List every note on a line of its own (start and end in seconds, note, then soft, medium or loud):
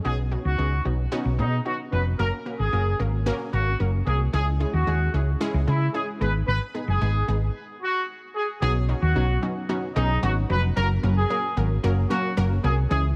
0.05 0.35 B1 loud
0.05 0.24 B3 medium
0.05 0.24 C#4 medium
0.05 0.24 D#4 medium
0.05 0.24 F#4 loud
0.05 0.15 G#4 medium
0.31 0.51 B3 medium
0.31 0.51 C#4 medium
0.31 0.51 D#4 medium
0.31 0.51 F#4 medium
0.45 0.55 C#2 medium
0.45 0.83 F#4 medium
0.58 0.79 C#2 medium
0.58 0.77 B3 medium
0.58 0.78 C#4 medium
0.58 0.78 D#4 medium
0.58 0.78 G#4 medium
0.85 1.05 B1 loud
0.85 1.04 B3 medium
0.85 1.04 C#4 medium
0.85 1.04 D#4 medium
0.85 1.04 F#4 medium
1.12 1.31 B3 loud
1.12 1.31 C#4 loud
1.12 1.31 D#4 loud
1.12 1.31 F#4 loud
1.25 1.40 B1 loud
1.39 1.59 B2 loud
1.39 1.58 B3 medium
1.39 1.58 C#4 medium
1.39 1.60 D#4 medium
1.39 1.58 D#4 medium
1.39 1.58 G#4 medium
1.65 1.85 B3 medium
1.65 1.85 C#4 medium
1.65 1.85 D#4 medium
1.65 1.76 F#4 medium
1.65 1.85 F#4 medium
1.92 2.12 F1 medium
1.92 2.11 B3 medium
1.92 2.12 C#4 medium
1.92 2.12 D#4 medium
1.92 2.12 F#4 medium
1.92 2.03 B4 medium
2.19 2.29 F#1 loud
2.19 2.38 A#3 medium
2.19 2.38 C#4 medium
2.19 2.38 F#4 medium
2.19 2.30 A#4 loud
2.19 2.38 A#4 loud
2.46 2.65 A#3 medium
2.46 2.65 C#4 medium
2.46 2.65 F#4 medium
2.46 2.65 A#4 medium
2.59 2.69 G#1 medium
2.59 2.97 G#4 medium
2.73 2.93 F#1 medium
2.73 2.92 A#3 medium
2.73 2.92 C#4 medium
2.73 2.92 F#4 medium
2.73 2.92 A#4 medium
2.99 3.30 G#1 medium
2.99 3.19 A#3 medium
2.99 3.19 C#4 medium
2.99 3.19 F#4 medium
2.99 3.19 A#4 medium
3.26 3.45 A#3 loud
3.26 3.45 C#4 loud
3.26 3.45 F#4 loud
3.26 3.46 A#4 loud
3.53 3.73 G#1 medium
3.53 3.72 A#3 medium
3.53 3.72 C#4 medium
3.53 3.72 F#4 medium
3.53 3.74 F#4 medium
3.53 3.72 A#4 medium
3.80 4.00 F#1 medium
3.80 3.99 A#3 medium
3.80 3.99 C#4 medium
3.80 3.99 F#4 medium
3.80 3.99 A#4 medium
4.06 4.27 C2 medium
4.06 4.26 A#3 medium
4.06 4.26 C#4 medium
4.06 4.26 F#4 medium
4.06 4.17 G#4 medium
4.06 4.26 A#4 medium
4.33 4.64 C#2 loud
4.33 4.52 G#3 loud
4.33 4.52 C#4 medium
4.33 4.53 E4 medium
4.33 4.44 G#4 loud
4.33 4.53 G#4 loud
4.60 4.79 G#3 medium
4.60 4.79 C#4 medium
4.60 4.79 E4 medium
4.60 4.79 G#4 medium
4.74 4.84 D#2 medium
4.74 5.11 F#4 medium
4.87 5.07 D#2 medium
4.87 5.06 G#3 medium
4.87 5.06 C#4 medium
4.87 5.06 E4 medium
4.87 5.06 G#4 medium
5.14 5.34 C#2 medium
5.14 5.33 G#3 medium
5.14 5.33 C#4 medium
5.14 5.33 E4 medium
5.14 5.33 G#4 medium
5.40 5.60 G#3 loud
5.40 5.60 C#4 loud
5.40 5.60 E4 loud
5.40 5.60 G#4 loud
5.54 5.64 C#2 loud
5.67 5.87 C#3 loud
5.67 5.86 G#3 medium
5.67 5.87 C#4 medium
5.67 5.88 E4 medium
5.67 5.87 E4 medium
5.67 5.87 G#4 medium
5.94 6.13 G#3 medium
5.94 6.13 C#4 medium
5.94 6.13 E4 medium
5.94 6.05 G#4 medium
5.94 6.13 G#4 medium
6.21 6.41 G#1 loud
6.21 6.64 G#3 medium
6.21 6.64 B3 medium
6.21 6.64 D#4 medium
6.21 6.64 G#4 medium
6.21 6.31 B4 medium
6.48 6.58 G#1 loud
6.48 6.58 B4 loud
6.74 6.94 G#3 medium
6.74 6.94 B3 medium
6.74 6.94 D#4 medium
6.74 6.94 G#4 medium
6.88 6.98 F#1 medium
6.88 7.26 G#4 medium
7.01 7.21 G#1 loud
7.01 7.20 G#3 medium
7.01 7.20 B3 medium
7.01 7.20 D#4 medium
7.01 7.21 G#4 medium
7.28 7.48 G#1 medium
7.28 7.47 G#3 medium
7.28 7.47 B3 medium
7.28 7.47 D#4 medium
7.28 7.47 G#4 medium
7.82 8.03 F#4 medium
8.35 8.46 G#4 medium
8.62 8.92 B1 loud
8.62 8.81 F#3 loud
8.62 8.81 B3 medium
8.62 8.81 C#4 medium
8.62 8.81 D#4 medium
8.62 8.81 F#4 loud
8.62 8.72 G#4 loud
8.89 9.08 F#3 medium
8.89 9.08 B3 medium
8.89 9.08 C#4 medium
8.89 9.08 D#4 medium
8.89 9.08 F#4 medium
9.02 9.12 D#2 loud
9.02 9.40 F#4 medium
9.15 9.36 B1 loud
9.15 9.35 F#3 medium
9.15 9.35 B3 medium
9.15 9.35 C#4 medium
9.15 9.35 D#4 medium
9.15 9.35 F#4 medium
9.42 9.61 F#3 medium
9.42 9.62 B3 medium
9.42 9.62 C#4 medium
9.42 9.62 D#4 medium
9.42 9.62 F#4 medium
9.69 9.88 F#3 loud
9.69 9.88 B3 medium
9.69 9.88 C#4 medium
9.69 9.88 D#4 medium
9.69 9.88 F#4 loud
9.96 10.16 B1 medium
9.96 10.15 F#3 loud
9.96 10.15 B3 medium
9.96 10.15 C#4 loud
9.96 10.17 D#4 medium
9.96 10.15 D#4 medium
9.96 10.15 G#4 loud
10.23 10.43 G#1 loud
10.23 10.42 F#3 loud
10.23 10.42 B3 medium
10.23 10.42 C#4 medium
10.23 10.42 D#4 medium
10.23 10.33 F#4 medium
10.23 10.42 F#4 loud
10.49 10.70 F1 loud
10.49 10.69 F#3 medium
10.49 10.69 B3 medium
10.49 10.69 C#4 medium
10.49 10.69 D#4 medium
10.49 10.69 F#4 medium
10.49 10.60 B4 medium
10.76 10.96 F#1 loud
10.76 10.95 F#3 loud
10.76 10.95 A#3 medium
10.76 10.95 C#4 medium
10.76 10.96 F#4 medium
10.76 10.87 A#4 loud
10.76 10.96 A#4 loud
11.03 11.23 F#1 loud
11.03 11.22 F#3 medium
11.03 11.22 A#3 medium
11.03 11.22 C#4 medium
11.03 11.22 F#4 medium
11.03 11.22 A#4 medium
11.17 11.54 G#4 medium
11.30 11.49 F#3 medium
11.30 11.49 A#3 medium
11.30 11.49 C#4 medium
11.30 11.49 F#4 medium
11.30 11.49 A#4 medium
11.57 11.77 G#1 loud
11.57 11.76 F#3 medium
11.57 11.76 A#3 medium
11.57 11.76 C#4 medium
11.57 11.76 F#4 medium
11.57 11.76 A#4 medium
11.83 12.04 F#1 loud
11.83 12.03 F#3 loud
11.83 12.03 A#3 medium
11.83 12.03 C#4 medium
11.83 12.03 F#4 medium
11.83 12.03 A#4 loud
12.10 12.29 F#3 loud
12.10 12.29 A#3 medium
12.10 12.29 C#4 medium
12.10 12.31 F#4 medium
12.10 12.29 F#4 medium
12.10 12.30 A#4 loud
12.37 12.57 F#1 medium
12.37 12.56 F#3 loud
12.37 12.56 A#3 loud
12.37 12.56 C#4 loud
12.37 12.56 F#4 loud
12.37 12.56 A#4 loud
12.64 12.84 C2 loud
12.64 12.83 F#3 medium
12.64 12.83 A#3 medium
12.64 12.83 C#4 medium
12.64 12.83 F#4 medium
12.64 12.74 G#4 medium
12.64 12.83 A#4 medium
12.90 13.16 C#2 loud
12.90 13.10 E3 loud
12.90 13.10 G#3 medium
12.90 13.10 C#4 medium
12.90 13.10 E4 medium
12.90 13.01 G#4 loud
12.90 13.10 G#4 loud